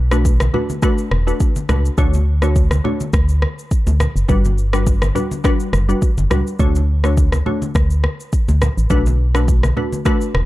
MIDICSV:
0, 0, Header, 1, 4, 480
1, 0, Start_track
1, 0, Key_signature, 2, "major"
1, 0, Tempo, 576923
1, 1647, Time_signature, 4, 2, 24, 8
1, 8697, End_track
2, 0, Start_track
2, 0, Title_t, "Synth pluck"
2, 0, Program_c, 0, 84
2, 97, Note_on_c, 0, 57, 75
2, 99, Note_on_c, 0, 62, 68
2, 101, Note_on_c, 0, 66, 67
2, 102, Note_on_c, 0, 71, 86
2, 271, Note_off_c, 0, 57, 0
2, 271, Note_off_c, 0, 62, 0
2, 272, Note_off_c, 0, 66, 0
2, 273, Note_off_c, 0, 71, 0
2, 446, Note_on_c, 0, 57, 75
2, 447, Note_on_c, 0, 62, 65
2, 449, Note_on_c, 0, 66, 69
2, 450, Note_on_c, 0, 71, 82
2, 631, Note_off_c, 0, 57, 0
2, 632, Note_off_c, 0, 62, 0
2, 633, Note_off_c, 0, 66, 0
2, 633, Note_off_c, 0, 71, 0
2, 685, Note_on_c, 0, 57, 92
2, 687, Note_on_c, 0, 62, 85
2, 688, Note_on_c, 0, 66, 84
2, 691, Note_on_c, 0, 71, 102
2, 1027, Note_off_c, 0, 57, 0
2, 1027, Note_off_c, 0, 62, 0
2, 1028, Note_off_c, 0, 66, 0
2, 1029, Note_off_c, 0, 71, 0
2, 1056, Note_on_c, 0, 57, 76
2, 1057, Note_on_c, 0, 62, 73
2, 1060, Note_on_c, 0, 66, 71
2, 1061, Note_on_c, 0, 71, 81
2, 1230, Note_off_c, 0, 57, 0
2, 1231, Note_off_c, 0, 62, 0
2, 1232, Note_off_c, 0, 66, 0
2, 1232, Note_off_c, 0, 71, 0
2, 1405, Note_on_c, 0, 57, 79
2, 1406, Note_on_c, 0, 62, 72
2, 1409, Note_on_c, 0, 66, 71
2, 1411, Note_on_c, 0, 71, 87
2, 1591, Note_off_c, 0, 57, 0
2, 1592, Note_off_c, 0, 62, 0
2, 1593, Note_off_c, 0, 66, 0
2, 1594, Note_off_c, 0, 71, 0
2, 1644, Note_on_c, 0, 57, 91
2, 1647, Note_on_c, 0, 62, 85
2, 1648, Note_on_c, 0, 66, 86
2, 1649, Note_on_c, 0, 73, 105
2, 1831, Note_off_c, 0, 57, 0
2, 1832, Note_off_c, 0, 62, 0
2, 1832, Note_off_c, 0, 66, 0
2, 1833, Note_off_c, 0, 73, 0
2, 2017, Note_on_c, 0, 57, 79
2, 2019, Note_on_c, 0, 62, 66
2, 2020, Note_on_c, 0, 66, 72
2, 2022, Note_on_c, 0, 73, 84
2, 2190, Note_off_c, 0, 57, 0
2, 2192, Note_off_c, 0, 62, 0
2, 2192, Note_off_c, 0, 66, 0
2, 2193, Note_off_c, 0, 73, 0
2, 2366, Note_on_c, 0, 57, 74
2, 2367, Note_on_c, 0, 62, 68
2, 2368, Note_on_c, 0, 66, 67
2, 2370, Note_on_c, 0, 73, 84
2, 2551, Note_off_c, 0, 57, 0
2, 2552, Note_off_c, 0, 62, 0
2, 2552, Note_off_c, 0, 66, 0
2, 2554, Note_off_c, 0, 73, 0
2, 3565, Note_on_c, 0, 55, 90
2, 3567, Note_on_c, 0, 62, 84
2, 3569, Note_on_c, 0, 66, 82
2, 3570, Note_on_c, 0, 71, 100
2, 3751, Note_off_c, 0, 55, 0
2, 3752, Note_off_c, 0, 62, 0
2, 3753, Note_off_c, 0, 66, 0
2, 3753, Note_off_c, 0, 71, 0
2, 3936, Note_on_c, 0, 55, 77
2, 3938, Note_on_c, 0, 62, 67
2, 3939, Note_on_c, 0, 66, 70
2, 3941, Note_on_c, 0, 71, 86
2, 4110, Note_off_c, 0, 55, 0
2, 4111, Note_off_c, 0, 62, 0
2, 4112, Note_off_c, 0, 66, 0
2, 4112, Note_off_c, 0, 71, 0
2, 4285, Note_on_c, 0, 55, 71
2, 4287, Note_on_c, 0, 62, 66
2, 4288, Note_on_c, 0, 66, 67
2, 4290, Note_on_c, 0, 71, 81
2, 4471, Note_off_c, 0, 55, 0
2, 4472, Note_off_c, 0, 62, 0
2, 4472, Note_off_c, 0, 66, 0
2, 4473, Note_off_c, 0, 71, 0
2, 4526, Note_on_c, 0, 55, 97
2, 4528, Note_on_c, 0, 62, 87
2, 4529, Note_on_c, 0, 66, 88
2, 4531, Note_on_c, 0, 71, 105
2, 4867, Note_off_c, 0, 55, 0
2, 4868, Note_off_c, 0, 62, 0
2, 4869, Note_off_c, 0, 66, 0
2, 4870, Note_off_c, 0, 71, 0
2, 4897, Note_on_c, 0, 55, 76
2, 4899, Note_on_c, 0, 62, 72
2, 4900, Note_on_c, 0, 66, 69
2, 4902, Note_on_c, 0, 71, 86
2, 5071, Note_off_c, 0, 55, 0
2, 5071, Note_off_c, 0, 62, 0
2, 5072, Note_off_c, 0, 66, 0
2, 5073, Note_off_c, 0, 71, 0
2, 5246, Note_on_c, 0, 55, 78
2, 5248, Note_on_c, 0, 62, 69
2, 5249, Note_on_c, 0, 66, 72
2, 5250, Note_on_c, 0, 71, 87
2, 5431, Note_off_c, 0, 55, 0
2, 5432, Note_off_c, 0, 62, 0
2, 5433, Note_off_c, 0, 66, 0
2, 5434, Note_off_c, 0, 71, 0
2, 5486, Note_on_c, 0, 57, 91
2, 5488, Note_on_c, 0, 62, 85
2, 5490, Note_on_c, 0, 66, 83
2, 5491, Note_on_c, 0, 73, 101
2, 5671, Note_off_c, 0, 57, 0
2, 5672, Note_off_c, 0, 62, 0
2, 5673, Note_off_c, 0, 66, 0
2, 5674, Note_off_c, 0, 73, 0
2, 5859, Note_on_c, 0, 57, 73
2, 5860, Note_on_c, 0, 62, 69
2, 5862, Note_on_c, 0, 66, 70
2, 5864, Note_on_c, 0, 73, 84
2, 6031, Note_off_c, 0, 57, 0
2, 6032, Note_off_c, 0, 62, 0
2, 6033, Note_off_c, 0, 66, 0
2, 6034, Note_off_c, 0, 73, 0
2, 6207, Note_on_c, 0, 57, 72
2, 6209, Note_on_c, 0, 62, 67
2, 6210, Note_on_c, 0, 66, 68
2, 6212, Note_on_c, 0, 73, 82
2, 6392, Note_off_c, 0, 57, 0
2, 6393, Note_off_c, 0, 62, 0
2, 6393, Note_off_c, 0, 66, 0
2, 6394, Note_off_c, 0, 73, 0
2, 7405, Note_on_c, 0, 57, 92
2, 7406, Note_on_c, 0, 62, 89
2, 7408, Note_on_c, 0, 66, 86
2, 7409, Note_on_c, 0, 71, 105
2, 7591, Note_off_c, 0, 57, 0
2, 7592, Note_off_c, 0, 62, 0
2, 7593, Note_off_c, 0, 66, 0
2, 7593, Note_off_c, 0, 71, 0
2, 7778, Note_on_c, 0, 57, 74
2, 7779, Note_on_c, 0, 62, 67
2, 7781, Note_on_c, 0, 66, 71
2, 7782, Note_on_c, 0, 71, 83
2, 7951, Note_off_c, 0, 57, 0
2, 7952, Note_off_c, 0, 62, 0
2, 7952, Note_off_c, 0, 66, 0
2, 7953, Note_off_c, 0, 71, 0
2, 8125, Note_on_c, 0, 57, 74
2, 8128, Note_on_c, 0, 62, 68
2, 8128, Note_on_c, 0, 66, 66
2, 8131, Note_on_c, 0, 71, 83
2, 8311, Note_off_c, 0, 57, 0
2, 8312, Note_off_c, 0, 62, 0
2, 8313, Note_off_c, 0, 66, 0
2, 8314, Note_off_c, 0, 71, 0
2, 8364, Note_on_c, 0, 57, 97
2, 8366, Note_on_c, 0, 62, 87
2, 8367, Note_on_c, 0, 66, 81
2, 8369, Note_on_c, 0, 71, 103
2, 8697, Note_off_c, 0, 57, 0
2, 8697, Note_off_c, 0, 62, 0
2, 8697, Note_off_c, 0, 66, 0
2, 8697, Note_off_c, 0, 71, 0
2, 8697, End_track
3, 0, Start_track
3, 0, Title_t, "FM bass"
3, 0, Program_c, 1, 39
3, 0, Note_on_c, 1, 35, 117
3, 414, Note_off_c, 1, 35, 0
3, 927, Note_on_c, 1, 28, 92
3, 1100, Note_off_c, 1, 28, 0
3, 1407, Note_on_c, 1, 37, 88
3, 1580, Note_off_c, 1, 37, 0
3, 1646, Note_on_c, 1, 38, 111
3, 2334, Note_off_c, 1, 38, 0
3, 2608, Note_on_c, 1, 38, 107
3, 2875, Note_off_c, 1, 38, 0
3, 3218, Note_on_c, 1, 38, 85
3, 3391, Note_off_c, 1, 38, 0
3, 3458, Note_on_c, 1, 30, 92
3, 3536, Note_off_c, 1, 30, 0
3, 3568, Note_on_c, 1, 31, 104
3, 4254, Note_off_c, 1, 31, 0
3, 4767, Note_on_c, 1, 30, 93
3, 4940, Note_off_c, 1, 30, 0
3, 5140, Note_on_c, 1, 30, 91
3, 5217, Note_off_c, 1, 30, 0
3, 5249, Note_on_c, 1, 37, 93
3, 5344, Note_off_c, 1, 37, 0
3, 5488, Note_on_c, 1, 38, 107
3, 6174, Note_off_c, 1, 38, 0
3, 6449, Note_on_c, 1, 38, 96
3, 6716, Note_off_c, 1, 38, 0
3, 7060, Note_on_c, 1, 38, 94
3, 7232, Note_off_c, 1, 38, 0
3, 7301, Note_on_c, 1, 33, 86
3, 7378, Note_off_c, 1, 33, 0
3, 7407, Note_on_c, 1, 35, 118
3, 8094, Note_off_c, 1, 35, 0
3, 8608, Note_on_c, 1, 28, 85
3, 8697, Note_off_c, 1, 28, 0
3, 8697, End_track
4, 0, Start_track
4, 0, Title_t, "Drums"
4, 95, Note_on_c, 9, 37, 99
4, 100, Note_on_c, 9, 82, 55
4, 178, Note_off_c, 9, 37, 0
4, 183, Note_off_c, 9, 82, 0
4, 209, Note_on_c, 9, 36, 91
4, 209, Note_on_c, 9, 82, 87
4, 292, Note_off_c, 9, 36, 0
4, 293, Note_off_c, 9, 82, 0
4, 334, Note_on_c, 9, 37, 96
4, 340, Note_on_c, 9, 82, 50
4, 341, Note_on_c, 9, 63, 78
4, 417, Note_off_c, 9, 37, 0
4, 423, Note_off_c, 9, 82, 0
4, 425, Note_off_c, 9, 63, 0
4, 449, Note_on_c, 9, 64, 80
4, 532, Note_off_c, 9, 64, 0
4, 579, Note_on_c, 9, 63, 70
4, 579, Note_on_c, 9, 82, 46
4, 662, Note_off_c, 9, 82, 0
4, 663, Note_off_c, 9, 63, 0
4, 685, Note_on_c, 9, 82, 73
4, 688, Note_on_c, 9, 36, 113
4, 691, Note_on_c, 9, 37, 93
4, 769, Note_off_c, 9, 82, 0
4, 771, Note_off_c, 9, 36, 0
4, 774, Note_off_c, 9, 37, 0
4, 815, Note_on_c, 9, 82, 56
4, 898, Note_off_c, 9, 82, 0
4, 927, Note_on_c, 9, 37, 88
4, 929, Note_on_c, 9, 63, 52
4, 1010, Note_off_c, 9, 37, 0
4, 1012, Note_off_c, 9, 63, 0
4, 1063, Note_on_c, 9, 82, 47
4, 1146, Note_off_c, 9, 82, 0
4, 1166, Note_on_c, 9, 82, 71
4, 1168, Note_on_c, 9, 36, 85
4, 1249, Note_off_c, 9, 82, 0
4, 1251, Note_off_c, 9, 36, 0
4, 1296, Note_on_c, 9, 82, 60
4, 1299, Note_on_c, 9, 63, 75
4, 1380, Note_off_c, 9, 82, 0
4, 1382, Note_off_c, 9, 63, 0
4, 1407, Note_on_c, 9, 37, 96
4, 1408, Note_on_c, 9, 82, 57
4, 1410, Note_on_c, 9, 64, 85
4, 1490, Note_off_c, 9, 37, 0
4, 1491, Note_off_c, 9, 82, 0
4, 1494, Note_off_c, 9, 64, 0
4, 1543, Note_on_c, 9, 82, 54
4, 1626, Note_off_c, 9, 82, 0
4, 1644, Note_on_c, 9, 82, 70
4, 1646, Note_on_c, 9, 36, 108
4, 1655, Note_on_c, 9, 64, 71
4, 1728, Note_off_c, 9, 82, 0
4, 1730, Note_off_c, 9, 36, 0
4, 1739, Note_off_c, 9, 64, 0
4, 1777, Note_on_c, 9, 82, 56
4, 1787, Note_on_c, 9, 63, 74
4, 1860, Note_off_c, 9, 82, 0
4, 1870, Note_off_c, 9, 63, 0
4, 2013, Note_on_c, 9, 37, 94
4, 2018, Note_on_c, 9, 82, 53
4, 2097, Note_off_c, 9, 37, 0
4, 2102, Note_off_c, 9, 82, 0
4, 2127, Note_on_c, 9, 82, 84
4, 2128, Note_on_c, 9, 36, 93
4, 2210, Note_off_c, 9, 82, 0
4, 2211, Note_off_c, 9, 36, 0
4, 2253, Note_on_c, 9, 37, 94
4, 2259, Note_on_c, 9, 82, 54
4, 2262, Note_on_c, 9, 63, 80
4, 2337, Note_off_c, 9, 37, 0
4, 2342, Note_off_c, 9, 82, 0
4, 2345, Note_off_c, 9, 63, 0
4, 2370, Note_on_c, 9, 64, 79
4, 2453, Note_off_c, 9, 64, 0
4, 2499, Note_on_c, 9, 82, 49
4, 2502, Note_on_c, 9, 63, 70
4, 2582, Note_off_c, 9, 82, 0
4, 2585, Note_off_c, 9, 63, 0
4, 2605, Note_on_c, 9, 82, 70
4, 2608, Note_on_c, 9, 36, 117
4, 2611, Note_on_c, 9, 37, 97
4, 2688, Note_off_c, 9, 82, 0
4, 2691, Note_off_c, 9, 36, 0
4, 2694, Note_off_c, 9, 37, 0
4, 2735, Note_on_c, 9, 82, 58
4, 2818, Note_off_c, 9, 82, 0
4, 2847, Note_on_c, 9, 37, 94
4, 2851, Note_on_c, 9, 63, 54
4, 2931, Note_off_c, 9, 37, 0
4, 2935, Note_off_c, 9, 63, 0
4, 2984, Note_on_c, 9, 82, 46
4, 3068, Note_off_c, 9, 82, 0
4, 3089, Note_on_c, 9, 36, 82
4, 3089, Note_on_c, 9, 82, 72
4, 3172, Note_off_c, 9, 36, 0
4, 3172, Note_off_c, 9, 82, 0
4, 3219, Note_on_c, 9, 63, 77
4, 3219, Note_on_c, 9, 82, 57
4, 3302, Note_off_c, 9, 82, 0
4, 3303, Note_off_c, 9, 63, 0
4, 3329, Note_on_c, 9, 37, 102
4, 3330, Note_on_c, 9, 82, 59
4, 3331, Note_on_c, 9, 64, 84
4, 3413, Note_off_c, 9, 37, 0
4, 3413, Note_off_c, 9, 82, 0
4, 3415, Note_off_c, 9, 64, 0
4, 3466, Note_on_c, 9, 82, 57
4, 3549, Note_off_c, 9, 82, 0
4, 3568, Note_on_c, 9, 36, 109
4, 3568, Note_on_c, 9, 82, 73
4, 3577, Note_on_c, 9, 64, 68
4, 3651, Note_off_c, 9, 36, 0
4, 3651, Note_off_c, 9, 82, 0
4, 3660, Note_off_c, 9, 64, 0
4, 3700, Note_on_c, 9, 82, 57
4, 3707, Note_on_c, 9, 63, 77
4, 3784, Note_off_c, 9, 82, 0
4, 3790, Note_off_c, 9, 63, 0
4, 3811, Note_on_c, 9, 82, 51
4, 3894, Note_off_c, 9, 82, 0
4, 3937, Note_on_c, 9, 37, 102
4, 3943, Note_on_c, 9, 82, 51
4, 4021, Note_off_c, 9, 37, 0
4, 4026, Note_off_c, 9, 82, 0
4, 4050, Note_on_c, 9, 36, 97
4, 4050, Note_on_c, 9, 82, 85
4, 4133, Note_off_c, 9, 36, 0
4, 4133, Note_off_c, 9, 82, 0
4, 4176, Note_on_c, 9, 37, 97
4, 4181, Note_on_c, 9, 82, 51
4, 4182, Note_on_c, 9, 63, 80
4, 4259, Note_off_c, 9, 37, 0
4, 4265, Note_off_c, 9, 63, 0
4, 4265, Note_off_c, 9, 82, 0
4, 4290, Note_on_c, 9, 64, 77
4, 4293, Note_on_c, 9, 82, 56
4, 4373, Note_off_c, 9, 64, 0
4, 4376, Note_off_c, 9, 82, 0
4, 4421, Note_on_c, 9, 63, 69
4, 4423, Note_on_c, 9, 82, 48
4, 4504, Note_off_c, 9, 63, 0
4, 4506, Note_off_c, 9, 82, 0
4, 4529, Note_on_c, 9, 36, 118
4, 4529, Note_on_c, 9, 82, 70
4, 4534, Note_on_c, 9, 37, 97
4, 4612, Note_off_c, 9, 82, 0
4, 4613, Note_off_c, 9, 36, 0
4, 4618, Note_off_c, 9, 37, 0
4, 4658, Note_on_c, 9, 82, 57
4, 4741, Note_off_c, 9, 82, 0
4, 4769, Note_on_c, 9, 37, 91
4, 4772, Note_on_c, 9, 63, 54
4, 4772, Note_on_c, 9, 82, 53
4, 4852, Note_off_c, 9, 37, 0
4, 4855, Note_off_c, 9, 63, 0
4, 4856, Note_off_c, 9, 82, 0
4, 4904, Note_on_c, 9, 82, 46
4, 4987, Note_off_c, 9, 82, 0
4, 5009, Note_on_c, 9, 82, 70
4, 5010, Note_on_c, 9, 36, 84
4, 5092, Note_off_c, 9, 82, 0
4, 5093, Note_off_c, 9, 36, 0
4, 5139, Note_on_c, 9, 82, 57
4, 5141, Note_on_c, 9, 63, 74
4, 5222, Note_off_c, 9, 82, 0
4, 5224, Note_off_c, 9, 63, 0
4, 5249, Note_on_c, 9, 37, 100
4, 5250, Note_on_c, 9, 82, 60
4, 5253, Note_on_c, 9, 64, 87
4, 5332, Note_off_c, 9, 37, 0
4, 5333, Note_off_c, 9, 82, 0
4, 5336, Note_off_c, 9, 64, 0
4, 5384, Note_on_c, 9, 82, 54
4, 5467, Note_off_c, 9, 82, 0
4, 5486, Note_on_c, 9, 82, 71
4, 5488, Note_on_c, 9, 36, 104
4, 5497, Note_on_c, 9, 64, 65
4, 5569, Note_off_c, 9, 82, 0
4, 5571, Note_off_c, 9, 36, 0
4, 5580, Note_off_c, 9, 64, 0
4, 5618, Note_on_c, 9, 82, 55
4, 5627, Note_on_c, 9, 63, 73
4, 5702, Note_off_c, 9, 82, 0
4, 5711, Note_off_c, 9, 63, 0
4, 5856, Note_on_c, 9, 37, 94
4, 5861, Note_on_c, 9, 82, 52
4, 5939, Note_off_c, 9, 37, 0
4, 5944, Note_off_c, 9, 82, 0
4, 5968, Note_on_c, 9, 82, 85
4, 5969, Note_on_c, 9, 36, 94
4, 6051, Note_off_c, 9, 82, 0
4, 6052, Note_off_c, 9, 36, 0
4, 6093, Note_on_c, 9, 37, 93
4, 6099, Note_on_c, 9, 82, 53
4, 6102, Note_on_c, 9, 63, 81
4, 6177, Note_off_c, 9, 37, 0
4, 6183, Note_off_c, 9, 82, 0
4, 6185, Note_off_c, 9, 63, 0
4, 6208, Note_on_c, 9, 64, 74
4, 6292, Note_off_c, 9, 64, 0
4, 6339, Note_on_c, 9, 63, 74
4, 6340, Note_on_c, 9, 82, 48
4, 6422, Note_off_c, 9, 63, 0
4, 6424, Note_off_c, 9, 82, 0
4, 6448, Note_on_c, 9, 82, 72
4, 6449, Note_on_c, 9, 36, 121
4, 6453, Note_on_c, 9, 37, 97
4, 6531, Note_off_c, 9, 82, 0
4, 6532, Note_off_c, 9, 36, 0
4, 6536, Note_off_c, 9, 37, 0
4, 6577, Note_on_c, 9, 82, 59
4, 6660, Note_off_c, 9, 82, 0
4, 6687, Note_on_c, 9, 37, 94
4, 6689, Note_on_c, 9, 63, 53
4, 6770, Note_off_c, 9, 37, 0
4, 6772, Note_off_c, 9, 63, 0
4, 6823, Note_on_c, 9, 82, 49
4, 6907, Note_off_c, 9, 82, 0
4, 6927, Note_on_c, 9, 82, 68
4, 6929, Note_on_c, 9, 36, 84
4, 7010, Note_off_c, 9, 82, 0
4, 7012, Note_off_c, 9, 36, 0
4, 7059, Note_on_c, 9, 82, 60
4, 7060, Note_on_c, 9, 63, 76
4, 7142, Note_off_c, 9, 82, 0
4, 7143, Note_off_c, 9, 63, 0
4, 7169, Note_on_c, 9, 37, 96
4, 7170, Note_on_c, 9, 82, 58
4, 7172, Note_on_c, 9, 64, 91
4, 7252, Note_off_c, 9, 37, 0
4, 7253, Note_off_c, 9, 82, 0
4, 7255, Note_off_c, 9, 64, 0
4, 7304, Note_on_c, 9, 82, 52
4, 7388, Note_off_c, 9, 82, 0
4, 7405, Note_on_c, 9, 82, 72
4, 7407, Note_on_c, 9, 36, 106
4, 7415, Note_on_c, 9, 64, 68
4, 7489, Note_off_c, 9, 82, 0
4, 7490, Note_off_c, 9, 36, 0
4, 7498, Note_off_c, 9, 64, 0
4, 7539, Note_on_c, 9, 82, 56
4, 7545, Note_on_c, 9, 63, 75
4, 7623, Note_off_c, 9, 82, 0
4, 7629, Note_off_c, 9, 63, 0
4, 7776, Note_on_c, 9, 37, 97
4, 7781, Note_on_c, 9, 82, 53
4, 7859, Note_off_c, 9, 37, 0
4, 7864, Note_off_c, 9, 82, 0
4, 7889, Note_on_c, 9, 36, 94
4, 7890, Note_on_c, 9, 82, 85
4, 7972, Note_off_c, 9, 36, 0
4, 7973, Note_off_c, 9, 82, 0
4, 8015, Note_on_c, 9, 37, 92
4, 8021, Note_on_c, 9, 63, 79
4, 8021, Note_on_c, 9, 82, 52
4, 8098, Note_off_c, 9, 37, 0
4, 8104, Note_off_c, 9, 63, 0
4, 8104, Note_off_c, 9, 82, 0
4, 8126, Note_on_c, 9, 64, 80
4, 8210, Note_off_c, 9, 64, 0
4, 8257, Note_on_c, 9, 63, 71
4, 8260, Note_on_c, 9, 82, 47
4, 8341, Note_off_c, 9, 63, 0
4, 8343, Note_off_c, 9, 82, 0
4, 8365, Note_on_c, 9, 82, 72
4, 8368, Note_on_c, 9, 36, 118
4, 8371, Note_on_c, 9, 37, 96
4, 8449, Note_off_c, 9, 82, 0
4, 8451, Note_off_c, 9, 36, 0
4, 8454, Note_off_c, 9, 37, 0
4, 8496, Note_on_c, 9, 82, 59
4, 8579, Note_off_c, 9, 82, 0
4, 8608, Note_on_c, 9, 37, 96
4, 8609, Note_on_c, 9, 63, 55
4, 8691, Note_off_c, 9, 37, 0
4, 8692, Note_off_c, 9, 63, 0
4, 8697, End_track
0, 0, End_of_file